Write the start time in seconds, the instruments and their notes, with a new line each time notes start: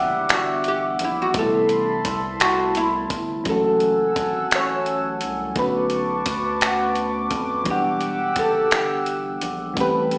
Already playing: analog synth bass F#1, fm electric piano E3 G3 B3 D4 F#5, analog synth pad G3 E5 F#5 D6
0.29 analog synth bass G1, finger snap, closed hi-hat
0.34 oud F#4
0.64 closed hi-hat
0.68 oud G4
0.99 analog synth bass A#1, closed hi-hat
1.04 oud E4
1.22 oud F#4
1.33 analog synth bass A1, fm electric piano B2 G3, analog synth pad A4 A5 B5 C6, kick, closed hi-hat
1.37 fm electric piano C3 A3 B3 E4, oud A4
1.69 closed hi-hat
2.05 analog synth bass C2, kick, closed hi-hat
2.40 oud F#4, finger snap, closed hi-hat
2.75 oud E4, closed hi-hat
3.10 analog synth bass G1, kick, closed hi-hat
3.44 analog synth bass F#1, fm electric piano E3 F#3 A3, analog synth pad A4 F#5 G#5 E6, kick, closed hi-hat
3.49 fm electric piano C#4 F#4, oud A4
3.80 closed hi-hat
4.16 analog synth bass G#1, kick, closed hi-hat
4.51 analog synth bass A1, oud C#5, finger snap, closed hi-hat
4.86 closed hi-hat
5.21 analog synth bass C2, closed hi-hat
5.55 analog synth bass B1, fm electric piano D3 A3 B3, analog synth pad B4 A5 C#6 D6, kick, closed hi-hat
5.59 fm electric piano C#4 F#4, oud B4
5.90 closed hi-hat
6.26 analog synth bass D2, kick, closed hi-hat
6.61 finger snap, closed hi-hat
6.66 oud F#4
6.95 closed hi-hat
7.31 analog synth bass F2, kick, closed hi-hat
7.64 analog synth bass E1, fm electric piano E3 G3 B3, analog synth pad G4 F#5 E6, kick, closed hi-hat
7.70 fm electric piano D4 F#5, oud G4
8.01 closed hi-hat
8.36 analog synth bass F#1, oud A4, kick, closed hi-hat
8.71 analog synth bass G1, oud G4, finger snap, closed hi-hat
9.06 closed hi-hat
9.41 analog synth bass A#1, closed hi-hat
9.74 analog synth bass A1, fm electric piano E3 G3 A3, analog synth pad A4 G5 A5 B5, kick, closed hi-hat
9.79 fm electric piano C4 G4, oud B4
10.11 closed hi-hat